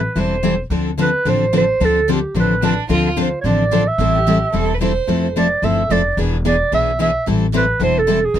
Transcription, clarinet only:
0, 0, Header, 1, 2, 480
1, 0, Start_track
1, 0, Key_signature, 0, "minor"
1, 0, Tempo, 272975
1, 1254, Time_signature, 4, 2, 24, 8
1, 14758, End_track
2, 0, Start_track
2, 0, Title_t, "Clarinet"
2, 0, Program_c, 0, 71
2, 0, Note_on_c, 0, 71, 75
2, 227, Note_off_c, 0, 71, 0
2, 227, Note_on_c, 0, 71, 59
2, 338, Note_on_c, 0, 72, 76
2, 364, Note_off_c, 0, 71, 0
2, 1070, Note_off_c, 0, 72, 0
2, 1789, Note_on_c, 0, 71, 85
2, 2269, Note_on_c, 0, 72, 89
2, 2296, Note_off_c, 0, 71, 0
2, 2722, Note_off_c, 0, 72, 0
2, 2764, Note_on_c, 0, 72, 92
2, 3242, Note_on_c, 0, 69, 84
2, 3268, Note_off_c, 0, 72, 0
2, 3688, Note_off_c, 0, 69, 0
2, 3729, Note_on_c, 0, 67, 68
2, 4141, Note_off_c, 0, 67, 0
2, 4214, Note_on_c, 0, 71, 77
2, 4879, Note_off_c, 0, 71, 0
2, 5605, Note_on_c, 0, 72, 72
2, 5940, Note_off_c, 0, 72, 0
2, 5998, Note_on_c, 0, 73, 64
2, 6068, Note_on_c, 0, 74, 82
2, 6094, Note_off_c, 0, 73, 0
2, 6814, Note_on_c, 0, 76, 88
2, 6841, Note_off_c, 0, 74, 0
2, 8458, Note_off_c, 0, 76, 0
2, 9451, Note_on_c, 0, 74, 77
2, 9921, Note_on_c, 0, 76, 89
2, 9947, Note_off_c, 0, 74, 0
2, 10400, Note_on_c, 0, 74, 78
2, 10427, Note_off_c, 0, 76, 0
2, 10868, Note_off_c, 0, 74, 0
2, 11381, Note_on_c, 0, 74, 79
2, 11806, Note_off_c, 0, 74, 0
2, 11857, Note_on_c, 0, 76, 93
2, 12283, Note_off_c, 0, 76, 0
2, 12333, Note_on_c, 0, 76, 85
2, 12761, Note_off_c, 0, 76, 0
2, 13311, Note_on_c, 0, 71, 89
2, 13730, Note_off_c, 0, 71, 0
2, 13773, Note_on_c, 0, 72, 93
2, 14041, Note_on_c, 0, 69, 85
2, 14067, Note_off_c, 0, 72, 0
2, 14515, Note_on_c, 0, 68, 80
2, 14542, Note_off_c, 0, 69, 0
2, 14758, Note_off_c, 0, 68, 0
2, 14758, End_track
0, 0, End_of_file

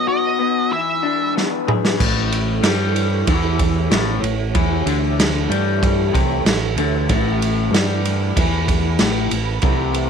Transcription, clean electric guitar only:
0, 0, Header, 1, 2, 480
1, 0, Start_track
1, 0, Tempo, 636267
1, 1507, Time_signature, 4, 2, 24, 8
1, 7619, End_track
2, 0, Start_track
2, 0, Title_t, "Clean electric guitar"
2, 0, Program_c, 0, 27
2, 0, Note_on_c, 0, 47, 68
2, 53, Note_on_c, 0, 66, 78
2, 294, Note_on_c, 0, 59, 69
2, 535, Note_on_c, 0, 52, 71
2, 539, Note_off_c, 0, 66, 0
2, 540, Note_off_c, 0, 47, 0
2, 540, Note_off_c, 0, 59, 0
2, 777, Note_on_c, 0, 62, 71
2, 1024, Note_on_c, 0, 59, 68
2, 1264, Note_on_c, 0, 68, 72
2, 1489, Note_off_c, 0, 52, 0
2, 1492, Note_on_c, 0, 45, 106
2, 1502, Note_off_c, 0, 62, 0
2, 1505, Note_off_c, 0, 59, 0
2, 1505, Note_off_c, 0, 68, 0
2, 1972, Note_off_c, 0, 45, 0
2, 1981, Note_on_c, 0, 55, 109
2, 2456, Note_off_c, 0, 55, 0
2, 2469, Note_on_c, 0, 52, 108
2, 2941, Note_off_c, 0, 52, 0
2, 2950, Note_on_c, 0, 45, 100
2, 3178, Note_off_c, 0, 45, 0
2, 3187, Note_on_c, 0, 45, 73
2, 3379, Note_off_c, 0, 45, 0
2, 3430, Note_on_c, 0, 52, 108
2, 3661, Note_off_c, 0, 52, 0
2, 3667, Note_on_c, 0, 50, 115
2, 4139, Note_off_c, 0, 50, 0
2, 4149, Note_on_c, 0, 55, 103
2, 4620, Note_off_c, 0, 55, 0
2, 4627, Note_on_c, 0, 48, 108
2, 4859, Note_off_c, 0, 48, 0
2, 4873, Note_on_c, 0, 45, 72
2, 5061, Note_off_c, 0, 45, 0
2, 5117, Note_on_c, 0, 50, 105
2, 5344, Note_off_c, 0, 50, 0
2, 5349, Note_on_c, 0, 45, 110
2, 5819, Note_off_c, 0, 45, 0
2, 5833, Note_on_c, 0, 55, 110
2, 6301, Note_off_c, 0, 55, 0
2, 6309, Note_on_c, 0, 52, 100
2, 6779, Note_off_c, 0, 52, 0
2, 6784, Note_on_c, 0, 45, 104
2, 7014, Note_off_c, 0, 45, 0
2, 7024, Note_on_c, 0, 45, 75
2, 7215, Note_off_c, 0, 45, 0
2, 7268, Note_on_c, 0, 48, 111
2, 7619, Note_off_c, 0, 48, 0
2, 7619, End_track
0, 0, End_of_file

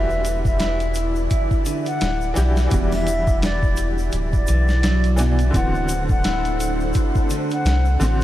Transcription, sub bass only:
0, 0, Header, 1, 2, 480
1, 0, Start_track
1, 0, Key_signature, 1, "minor"
1, 0, Tempo, 705882
1, 1847, Time_signature, 4, 2, 24, 8
1, 5603, End_track
2, 0, Start_track
2, 0, Title_t, "Sub bass"
2, 0, Program_c, 0, 38
2, 0, Note_on_c, 0, 28, 94
2, 869, Note_off_c, 0, 28, 0
2, 1371, Note_on_c, 0, 26, 84
2, 1585, Note_off_c, 0, 26, 0
2, 1611, Note_on_c, 0, 35, 84
2, 1824, Note_off_c, 0, 35, 0
2, 1847, Note_on_c, 0, 28, 98
2, 2787, Note_off_c, 0, 28, 0
2, 2809, Note_on_c, 0, 26, 97
2, 3023, Note_off_c, 0, 26, 0
2, 3050, Note_on_c, 0, 35, 94
2, 3749, Note_off_c, 0, 35, 0
2, 3769, Note_on_c, 0, 26, 97
2, 4708, Note_off_c, 0, 26, 0
2, 5203, Note_on_c, 0, 36, 84
2, 5420, Note_off_c, 0, 36, 0
2, 5442, Note_on_c, 0, 33, 85
2, 5603, Note_off_c, 0, 33, 0
2, 5603, End_track
0, 0, End_of_file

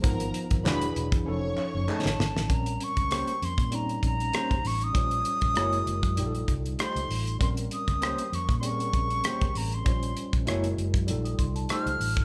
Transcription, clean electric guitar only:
0, 0, Header, 1, 2, 480
1, 0, Start_track
1, 0, Tempo, 613497
1, 30, Time_signature, 4, 2, 24, 8
1, 9582, End_track
2, 0, Start_track
2, 0, Title_t, "Clean electric guitar"
2, 0, Program_c, 0, 27
2, 514, Note_on_c, 0, 56, 65
2, 516, Note_on_c, 0, 62, 74
2, 519, Note_on_c, 0, 66, 70
2, 522, Note_on_c, 0, 71, 72
2, 670, Note_off_c, 0, 56, 0
2, 671, Note_off_c, 0, 62, 0
2, 673, Note_off_c, 0, 66, 0
2, 674, Note_off_c, 0, 71, 0
2, 1471, Note_on_c, 0, 57, 66
2, 1474, Note_on_c, 0, 63, 81
2, 1478, Note_on_c, 0, 68, 76
2, 1481, Note_on_c, 0, 73, 76
2, 1629, Note_off_c, 0, 57, 0
2, 1631, Note_off_c, 0, 63, 0
2, 1632, Note_off_c, 0, 68, 0
2, 1634, Note_off_c, 0, 73, 0
2, 2432, Note_on_c, 0, 58, 72
2, 2434, Note_on_c, 0, 61, 67
2, 2438, Note_on_c, 0, 67, 73
2, 2441, Note_on_c, 0, 72, 72
2, 2590, Note_off_c, 0, 58, 0
2, 2591, Note_off_c, 0, 61, 0
2, 2593, Note_off_c, 0, 67, 0
2, 2595, Note_off_c, 0, 72, 0
2, 3393, Note_on_c, 0, 58, 71
2, 3396, Note_on_c, 0, 61, 61
2, 3399, Note_on_c, 0, 67, 74
2, 3400, Note_on_c, 0, 72, 72
2, 3551, Note_off_c, 0, 58, 0
2, 3553, Note_off_c, 0, 61, 0
2, 3554, Note_off_c, 0, 67, 0
2, 3555, Note_off_c, 0, 72, 0
2, 4353, Note_on_c, 0, 58, 64
2, 4355, Note_on_c, 0, 64, 70
2, 4360, Note_on_c, 0, 68, 77
2, 4363, Note_on_c, 0, 73, 77
2, 4512, Note_off_c, 0, 58, 0
2, 4513, Note_off_c, 0, 64, 0
2, 4515, Note_off_c, 0, 68, 0
2, 4516, Note_off_c, 0, 73, 0
2, 5313, Note_on_c, 0, 57, 64
2, 5317, Note_on_c, 0, 63, 65
2, 5320, Note_on_c, 0, 67, 77
2, 5323, Note_on_c, 0, 72, 76
2, 5472, Note_off_c, 0, 57, 0
2, 5474, Note_off_c, 0, 63, 0
2, 5475, Note_off_c, 0, 67, 0
2, 5477, Note_off_c, 0, 72, 0
2, 6270, Note_on_c, 0, 58, 77
2, 6274, Note_on_c, 0, 61, 77
2, 6278, Note_on_c, 0, 67, 86
2, 6280, Note_on_c, 0, 72, 75
2, 6430, Note_off_c, 0, 58, 0
2, 6432, Note_off_c, 0, 61, 0
2, 6434, Note_off_c, 0, 67, 0
2, 6435, Note_off_c, 0, 72, 0
2, 7231, Note_on_c, 0, 58, 69
2, 7234, Note_on_c, 0, 61, 62
2, 7238, Note_on_c, 0, 67, 78
2, 7240, Note_on_c, 0, 72, 73
2, 7390, Note_off_c, 0, 58, 0
2, 7392, Note_off_c, 0, 61, 0
2, 7394, Note_off_c, 0, 67, 0
2, 7395, Note_off_c, 0, 72, 0
2, 8191, Note_on_c, 0, 58, 72
2, 8193, Note_on_c, 0, 64, 81
2, 8197, Note_on_c, 0, 68, 67
2, 8201, Note_on_c, 0, 73, 76
2, 8349, Note_off_c, 0, 58, 0
2, 8351, Note_off_c, 0, 64, 0
2, 8352, Note_off_c, 0, 68, 0
2, 8355, Note_off_c, 0, 73, 0
2, 9151, Note_on_c, 0, 57, 60
2, 9155, Note_on_c, 0, 63, 65
2, 9158, Note_on_c, 0, 67, 75
2, 9161, Note_on_c, 0, 72, 73
2, 9309, Note_off_c, 0, 57, 0
2, 9311, Note_off_c, 0, 63, 0
2, 9312, Note_off_c, 0, 67, 0
2, 9314, Note_off_c, 0, 72, 0
2, 9582, End_track
0, 0, End_of_file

